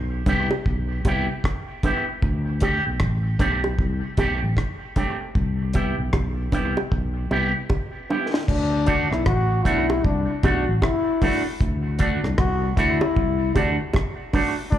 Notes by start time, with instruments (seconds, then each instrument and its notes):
Already playing: fretless electric bass B1
0.26 fretless electric bass C2, clean electric guitar B3 E4 G4, kick, closed hi-hat, low bongo
0.51 high bongo
0.66 fretless electric bass B1, kick
1.05 fretless electric bass C2, clean electric guitar B3 E4 G4, kick, closed hi-hat, high bongo
1.44 kick, cross-stick
1.83 clean electric guitar B3 E4 G4, kick, closed hi-hat, low bongo
2.09 muted clean electric guitar stroke
2.22 fretless electric bass D2, kick
2.60 clean electric guitar A3 C4 G4, kick, closed hi-hat, high bongo
2.87 fretless electric bass B1
3.00 fretless electric bass A1, kick, cross-stick
3.39 fretless electric bass B1, clean electric guitar A3 C4 G4, kick, closed hi-hat, low bongo
3.64 high bongo
3.79 fretless electric bass C2, kick
4.17 fretless electric bass B1, clean electric guitar A3 C4 G4, kick, closed hi-hat, high bongo
4.43 fretless electric bass A1
4.57 kick, cross-stick
4.96 clean electric guitar A3 C4 G4, kick, closed hi-hat, low bongo
5.21 muted clean electric guitar stroke
5.35 fretless electric bass C2, kick
5.73 clean electric guitar B3 E4 G4, kick, closed hi-hat, high bongo
5.99 fretless electric bass B1
6.13 fretless electric bass B1, kick, cross-stick, high bongo
6.52 fretless electric bass C2, clean electric guitar B3 E4 G4, kick, closed hi-hat, low bongo
6.77 high bongo
6.92 fretless electric bass B1, kick
7.31 fretless electric bass C2, clean electric guitar B3 E4 G4, high bongo
7.70 kick, high bongo
8.09 clean electric guitar B3 E4 G4, low bongo
8.33 muted clean electric guitar stroke, snare
8.48 fretless electric bass D2, trombone D4, kick, crash
8.86 clean electric guitar A3 D4 F#4, kick, closed hi-hat
9.11 fretless electric bass B1, trombone E4, cross-stick
9.26 fretless electric bass A1, trombone F#4, kick, cross-stick
9.65 fretless electric bass B1, clean electric guitar A3 D4 F#4, trombone E4, kick, closed hi-hat
9.90 high bongo
10.04 fretless electric bass C2, trombone D4, kick
10.43 fretless electric bass B1, clean electric guitar A3 D4 F#4, trombone F#4, kick, closed hi-hat, high bongo
10.67 fretless electric bass A1
10.82 trombone E4, kick, cross-stick, high bongo
11.22 clean electric guitar A3 D4 F#4, kick, open hi-hat, low bongo
11.46 muted clean electric guitar stroke
11.60 fretless electric bass D2, kick, hi-hat pedal
11.99 clean electric guitar A3 D4 F#4, trombone D4, kick, closed hi-hat
12.24 fretless electric bass C2, cross-stick
12.38 fretless electric bass C2, trombone F#4, kick, cross-stick
12.76 fretless electric bass D2, clean electric guitar A3 D4 F#4, trombone E4, kick, closed hi-hat
13.01 high bongo
13.16 fretless electric bass C2, kick
13.55 fretless electric bass D2, clean electric guitar A3 D4 F#4, trombone D4, kick, closed hi-hat, high bongo
13.93 kick, cross-stick, high bongo
14.33 clean electric guitar A3 D4 F#4, kick, open hi-hat, low bongo
14.59 muted clean electric guitar stroke
14.71 fretless electric bass D2, trombone D4, kick, hi-hat pedal